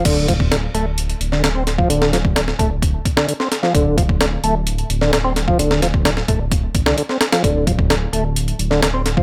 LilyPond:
<<
  \new Staff \with { instrumentName = "Tonewheel organ" } { \clef bass \time 4/4 \key d \minor \tempo 4 = 130 d8 f16 r16 d16 r16 a16 r4 d16 d16 c'16 r16 f16 | d8 f16 r16 d16 r16 a16 r4 d16 d16 c'16 r16 f16 | d8 f16 r16 d16 r16 a16 r4 d16 d16 c'16 r16 f16 | d8 f16 r16 d16 r16 a16 r4 d16 d16 c'16 r16 f16 |
d8 f16 r16 d16 r16 a16 r4 d16 d16 c'16 r16 f16 | }
  \new Staff \with { instrumentName = "Detuned saw bass" } { \clef bass \time 4/4 \key d \minor d,,4~ d,,16 r16 d,,8. r16 d,,4~ d,,16 r16 | d,,4~ d,,16 r16 d,,8. r4. r16 | d,,4~ d,,16 r16 d,,8. r16 d,,4~ d,,16 r16 | d,,4~ d,,16 r16 d,,8. r16 a,,16 c,16 r4 |
d,,4~ d,,16 r16 d,,8. r16 d,,4~ d,,16 r16 | }
  \new DrumStaff \with { instrumentName = "Drums" } \drummode { \time 4/4 <cymc hh bd>8 <hh bd>16 bd16 <hh sn>8 hh8 hh16 hh16 hh16 sn16 <hh sn>8 <hh sn>16 bd16 | hh16 sn16 <hh sn>16 bd16 <hh sn>16 sn16 <hh bd>8 <hh bd>8 <hh bd>16 sn16 hh16 sn16 <hh sn>16 sn16 | <hh bd>8 <hh bd>16 bd16 <hh sn>8 hh8 hh16 hh16 hh16 sn16 <hh sn>8 <hh sn>16 bd16 | hh16 sn16 <hh sn>16 bd16 <hh sn>16 sn16 <hh bd>8 <hh bd>8 <hh bd>16 sn16 hh16 sn16 <hh sn>16 <hh sn>16 |
<hh bd>8 <hh bd>16 bd16 <hh sn>8 hh8 hh16 hh16 hh16 sn16 <hh sn>8 <hh sn>16 bd16 | }
>>